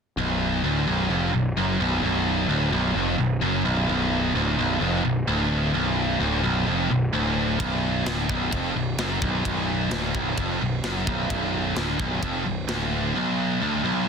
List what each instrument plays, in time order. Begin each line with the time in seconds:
0.17 picked electric bass B0, distorted electric guitar B1
0.64 picked electric bass D1, distorted electric guitar D2
0.87 picked electric bass B0, distorted electric guitar B1
1.10 picked electric bass F1, distorted electric guitar F2
1.33 picked electric bass B0, distorted electric guitar B1
1.56 picked electric bass F#1, distorted electric guitar F#2
1.79 picked electric bass B0, distorted electric guitar B1
2.02 picked electric bass B0, distorted electric guitar B1
2.48 picked electric bass D1, distorted electric guitar D2
2.72 picked electric bass B0, distorted electric guitar B1
2.95 picked electric bass F1, distorted electric guitar F2
3.18 picked electric bass B0, distorted electric guitar B1
3.41 picked electric bass F#1, distorted electric guitar F#2
3.65 picked electric bass B0, distorted electric guitar B1
3.89 picked electric bass B0, distorted electric guitar B1
4.34 picked electric bass D1, distorted electric guitar D2
4.58 picked electric bass B0, distorted electric guitar B1
4.81 picked electric bass F1, distorted electric guitar F2
5.04 picked electric bass B0, distorted electric guitar B1
5.27 picked electric bass D1, distorted electric guitar D2
5.74 picked electric bass B0, distorted electric guitar B1
6.20 picked electric bass D1, distorted electric guitar D2
6.43 picked electric bass B0, distorted electric guitar B1
6.68 picked electric bass F1, distorted electric guitar F2
6.90 picked electric bass B0, distorted electric guitar B1
7.13 picked electric bass D1, distorted electric guitar D2
7.60 picked electric bass B0, distorted electric guitar B1, kick, ride bell
8.06 picked electric bass D1, distorted electric guitar D2, snare, ride bell
8.29 picked electric bass B0, distorted electric guitar B1, kick
8.52 picked electric bass F1, distorted electric guitar F2, kick, ride bell
8.74 picked electric bass B0, distorted electric guitar B1
8.97 picked electric bass F#1, distorted electric guitar F#2, snare, ride bell
9.21 picked electric bass B0, distorted electric guitar B1, kick
9.45 picked electric bass B0, distorted electric guitar B1, kick, ride bell
9.90 picked electric bass D1, distorted electric guitar D2, snare, ride bell
10.15 picked electric bass B0, distorted electric guitar B1, kick
10.37 picked electric bass F1, distorted electric guitar F2, kick, ride bell
10.61 picked electric bass B0, distorted electric guitar B1
10.83 picked electric bass F#1, distorted electric guitar F#2, snare, ride bell
11.07 picked electric bass B0, distorted electric guitar B1, kick
11.30 picked electric bass B0, distorted electric guitar B1, kick, ride bell
11.76 picked electric bass D1, distorted electric guitar D2, snare, ride bell
11.99 picked electric bass B0, distorted electric guitar B1, kick
12.23 picked electric bass F1, distorted electric guitar F2, kick, ride bell
12.46 picked electric bass B0, distorted electric guitar B1
12.69 picked electric bass D1, distorted electric guitar D2, snare, ride bell
13.15 distorted electric guitar B1
13.61 distorted electric guitar D2
13.85 distorted electric guitar B1